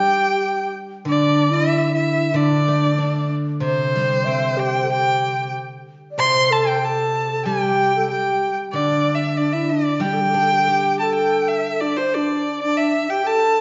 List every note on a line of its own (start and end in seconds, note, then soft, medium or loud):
0.00 1.71 G3 medium
0.00 0.75 G4 medium
0.00 0.71 G5 medium
1.05 2.33 D3 medium
1.05 1.52 D4 medium
1.05 1.55 D5 medium
1.51 1.92 E4 medium
1.51 1.95 E5 medium
1.93 2.33 E4 medium
1.93 2.38 E5 medium
2.34 4.26 D3 medium
2.34 2.95 D4 medium
2.34 3.31 D5 medium
2.68 3.95 A3 soft
2.98 4.26 D4 soft
2.98 3.29 D4 medium
3.60 5.54 C3 medium
3.60 4.26 C5 medium
3.64 4.61 C5 medium
3.96 5.23 G3 soft
4.25 5.55 C4 soft
4.25 4.58 E5 medium
4.57 4.83 G4 medium
4.57 4.91 G5 medium
4.83 4.91 A4 soft
4.90 5.55 G4 medium
4.90 5.52 G5 medium
6.11 6.21 D5 medium
6.18 8.12 C3 medium
6.18 6.52 C5 medium
6.18 6.54 C6 loud
6.51 6.82 A4 medium
6.51 6.69 A5 medium
6.68 6.86 G5 medium
6.82 7.28 A4 medium
6.82 7.45 A5 medium
7.31 7.48 A4 medium
7.45 9.38 G3 medium
7.45 7.95 G4 medium
7.45 8.07 G5 medium
7.96 8.13 A4 medium
8.10 8.60 G4 medium
8.10 8.56 G5 medium
8.72 10.67 D3 medium
8.72 9.10 D4 medium
8.72 9.16 D5 medium
9.15 9.39 E5 medium
9.37 9.55 D4 medium
9.37 9.54 D5 medium
9.53 9.74 E4 medium
9.53 9.71 E5 medium
9.70 10.06 D4 medium
9.70 10.03 D5 medium
10.00 11.96 G3 medium
10.00 10.99 G5 medium
10.04 10.15 G4 medium
10.14 10.22 A4 medium
10.21 10.31 G4 medium
10.29 10.37 A4 medium
10.34 11.65 D4 soft
10.34 10.44 G4 medium
10.43 10.54 A4 medium
10.52 10.61 G4 medium
10.60 10.70 A4 medium
10.67 11.97 G4 soft
10.67 11.01 G4 medium
11.00 11.83 A4 medium
11.00 11.14 A5 medium
11.15 11.50 G5 medium
11.48 11.82 E5 medium
11.80 12.00 D4 medium
11.80 11.98 D5 medium
11.97 12.15 C5 medium
11.97 12.17 C5 medium
12.14 12.63 D4 medium
12.14 12.61 D5 medium
12.62 13.07 D4 medium
12.62 12.79 D5 medium
12.77 13.12 E5 medium
13.10 13.25 G4 medium
13.10 13.28 G5 medium
13.26 13.61 A4 medium
13.26 13.61 A5 medium